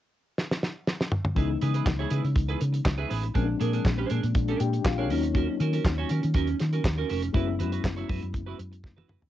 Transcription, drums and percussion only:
0.38 snare medium
0.51 snare medium
0.63 snare medium
0.87 snare medium
1.01 snare loud
1.12 mid tom medium
1.25 mid tom loud
1.36 kick medium
1.36 closed hi-hat medium
1.61 closed hi-hat medium
1.74 closed hi-hat medium
1.86 kick medium
1.86 snare loud
1.86 clap medium
2.10 closed hi-hat medium
2.24 closed hi-hat soft
2.35 kick loud
2.35 closed hi-hat medium
2.49 closed hi-hat soft
2.61 closed hi-hat medium
2.74 closed hi-hat soft
2.85 kick loud
2.85 snare loud
2.85 clap medium
3.11 open hi-hat medium
3.23 closed hi-hat soft
3.35 kick medium
3.35 closed hi-hat medium
3.61 closed hi-hat medium
3.73 closed hi-hat soft
3.85 kick loud
3.85 snare loud
3.85 clap medium
4.10 closed hi-hat medium
4.23 closed hi-hat soft
4.35 kick loud
4.35 closed hi-hat medium
4.48 closed hi-hat soft
4.60 closed hi-hat medium
4.73 closed hi-hat soft
4.85 kick loud
4.85 snare loud
4.85 clap loud
5.10 open hi-hat medium
5.23 closed hi-hat soft
5.35 kick loud
5.35 closed hi-hat medium
5.60 closed hi-hat medium
5.73 closed hi-hat medium
5.84 kick loud
5.84 snare loud
5.84 clap loud
6.09 closed hi-hat medium
6.23 closed hi-hat soft
6.34 kick loud
6.34 closed hi-hat medium
6.47 closed hi-hat soft
6.60 snare soft
6.60 closed hi-hat medium
6.73 closed hi-hat soft
6.84 kick loud
6.84 snare loud
6.84 clap medium
7.09 open hi-hat medium
7.22 closed hi-hat soft
7.34 kick loud
7.34 closed hi-hat medium
7.60 closed hi-hat medium
7.72 closed hi-hat soft
7.84 kick loud
7.84 snare loud
7.84 clap medium
7.97 closed hi-hat soft
8.09 kick medium
8.09 open hi-hat medium
8.23 closed hi-hat soft
8.34 kick loud
8.34 closed hi-hat medium
8.59 closed hi-hat medium
8.73 closed hi-hat soft
8.84 kick loud
8.84 snare medium
8.98 high tom medium
9.09 mid tom medium
9.22 floor tom medium

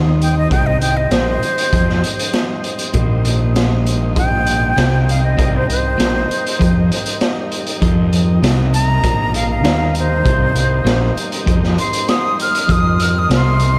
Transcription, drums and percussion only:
0.22 closed hi-hat medium
0.51 kick loud
0.51 closed hi-hat medium
0.81 closed hi-hat medium
1.11 snare loud
1.11 closed hi-hat medium
1.43 closed hi-hat medium
1.58 closed hi-hat medium
1.73 kick loud
1.73 closed hi-hat medium
1.89 snare soft
2.04 closed hi-hat medium
2.19 closed hi-hat medium
2.33 snare loud
2.33 closed hi-hat medium
2.64 closed hi-hat medium
2.79 closed hi-hat medium
2.94 kick loud
2.94 closed hi-hat medium
3.25 closed hi-hat medium
3.56 snare loud
3.56 closed hi-hat medium
3.86 closed hi-hat medium
4.16 kick loud
4.16 closed hi-hat medium
4.47 closed hi-hat medium
4.78 snare loud
4.78 closed hi-hat medium
5.09 closed hi-hat medium
5.39 kick loud
5.39 closed hi-hat medium
5.70 closed hi-hat medium
6.00 snare loud
6.00 closed hi-hat medium
6.31 closed hi-hat medium
6.46 closed hi-hat medium
6.61 kick loud
6.61 closed hi-hat medium
6.92 closed hi-hat medium
7.06 closed hi-hat medium
7.21 snare loud
7.21 closed hi-hat medium
7.52 closed hi-hat medium
7.67 closed hi-hat medium
7.82 kick loud
7.82 closed hi-hat medium
8.13 closed hi-hat medium
8.44 snare loud
8.44 closed hi-hat medium
8.74 closed hi-hat medium
9.04 kick loud
9.04 closed hi-hat medium
9.34 closed hi-hat medium
9.64 snare loud
9.64 closed hi-hat medium
9.95 closed hi-hat medium
10.26 kick loud
10.26 closed hi-hat medium
10.56 closed hi-hat medium
10.86 snare loud
10.86 closed hi-hat medium
11.17 closed hi-hat medium
11.32 closed hi-hat medium
11.47 kick loud
11.47 closed hi-hat medium
11.63 snare soft
11.78 closed hi-hat medium
11.93 closed hi-hat medium
12.08 snare loud
12.08 closed hi-hat medium
12.40 closed hi-hat medium
12.55 closed hi-hat medium
12.69 kick medium
12.69 closed hi-hat medium
13.00 closed hi-hat medium
13.31 snare loud
13.31 closed hi-hat medium
13.60 closed hi-hat medium

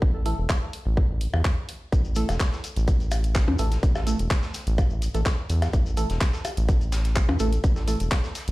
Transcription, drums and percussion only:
0.02 kick loud
0.26 open hi-hat medium
0.50 kick loud
0.50 clap medium
0.50 percussion blips soft
0.73 open hi-hat medium
0.97 kick loud
1.21 open hi-hat medium
1.34 percussion blips soft
1.45 kick loud
1.45 clap medium
1.69 open hi-hat medium
1.92 kick loud
1.92 closed hi-hat medium
1.92 closed hi-hat soft
1.92 shekere medium
2.04 shekere soft
2.15 closed hi-hat medium
2.15 open hi-hat medium
2.15 shekere medium
2.29 snare soft
2.29 closed hi-hat soft
2.29 percussion blips soft
2.29 shekere soft
2.39 kick loud
2.39 snare loud
2.39 clap medium
2.39 closed hi-hat medium
2.39 closed hi-hat soft
2.39 shekere soft
2.53 snare medium
2.53 shekere soft
2.64 closed hi-hat medium
2.64 open hi-hat medium
2.64 shekere medium
2.76 closed hi-hat soft
2.76 shekere soft
2.88 kick loud
2.88 closed hi-hat medium
2.88 closed hi-hat soft
2.88 shekere medium
3.00 closed hi-hat soft
3.00 shekere soft
3.11 closed hi-hat medium
3.11 open hi-hat medium
3.11 percussion blips soft
3.11 shekere loud
3.24 closed hi-hat soft
3.24 shekere soft
3.35 kick loud
3.35 snare loud
3.35 clap medium
3.35 closed hi-hat medium
3.35 closed hi-hat soft
3.35 shekere medium
3.48 percussion blips medium
3.58 closed hi-hat medium
3.58 open hi-hat medium
3.58 shekere medium
3.71 snare soft
3.71 closed hi-hat medium
3.71 shekere soft
3.83 kick loud
3.83 closed hi-hat medium
3.83 closed hi-hat soft
3.83 shekere soft
3.95 snare soft
3.95 percussion blips soft
3.95 shekere soft
4.07 closed hi-hat medium
4.07 open hi-hat medium
4.07 shekere medium
4.19 closed hi-hat medium
4.19 shekere soft
4.30 kick loud
4.30 snare loud
4.30 clap medium
4.30 closed hi-hat medium
4.30 closed hi-hat soft
4.30 shekere soft
4.43 snare medium
4.43 shekere soft
4.54 snare soft
4.54 closed hi-hat medium
4.54 open hi-hat medium
4.54 shekere medium
4.67 closed hi-hat medium
4.67 shekere soft
4.78 kick loud
4.78 closed hi-hat medium
4.78 closed hi-hat soft
4.78 percussion blips soft
4.78 shekere medium
4.90 shekere soft
5.02 closed hi-hat medium
5.02 open hi-hat medium
5.02 shekere medium
5.14 closed hi-hat medium
5.14 closed hi-hat soft
5.14 shekere soft
5.26 kick loud
5.26 snare loud
5.26 clap medium
5.26 closed hi-hat soft
5.26 closed hi-hat medium
5.26 shekere soft
5.50 closed hi-hat medium
5.50 open hi-hat medium
5.50 shekere medium
5.62 snare medium
5.62 closed hi-hat medium
5.62 percussion blips soft
5.62 shekere soft
5.73 kick loud
5.73 closed hi-hat medium
5.73 closed hi-hat soft
5.73 shekere medium
5.86 shekere soft
5.97 closed hi-hat medium
5.97 open hi-hat medium
5.97 shekere medium
6.10 snare soft
6.10 closed hi-hat medium
6.10 shekere soft
6.21 kick loud
6.21 snare loud
6.21 clap medium
6.21 closed hi-hat medium
6.21 closed hi-hat soft
6.21 shekere soft
6.33 snare soft
6.33 shekere soft
6.45 closed hi-hat medium
6.45 open hi-hat medium
6.45 percussion blips soft
6.45 shekere medium
6.57 closed hi-hat medium
6.57 shekere soft
6.69 kick loud
6.69 closed hi-hat soft
6.69 closed hi-hat medium
6.69 shekere soft
6.81 closed hi-hat soft
6.81 shekere soft
6.92 snare loud
6.92 closed hi-hat medium
6.92 open hi-hat medium
6.92 shekere medium
7.05 snare soft
7.05 closed hi-hat medium
7.05 shekere soft
7.16 kick loud
7.16 clap medium
7.16 closed hi-hat soft
7.16 closed hi-hat medium
7.16 shekere soft
7.29 percussion blips soft
7.29 percussion blips medium
7.39 closed hi-hat medium
7.39 open hi-hat medium
7.39 shekere medium
7.53 closed hi-hat soft
7.53 shekere soft
7.64 kick loud
7.64 closed hi-hat medium
7.64 closed hi-hat soft
7.64 shekere soft
7.76 snare soft
7.76 shekere soft
7.88 closed hi-hat medium
7.88 open hi-hat medium
7.88 shekere medium
8.00 closed hi-hat medium
8.00 shekere soft
8.11 kick loud
8.11 snare loud
8.11 clap medium
8.11 closed hi-hat soft
8.11 closed hi-hat medium
8.11 percussion blips soft
8.11 shekere soft
8.24 snare medium
8.24 shekere soft
8.35 snare soft
8.35 closed hi-hat medium
8.35 open hi-hat medium
8.35 shekere medium
8.48 closed hi-hat medium
8.48 shekere soft

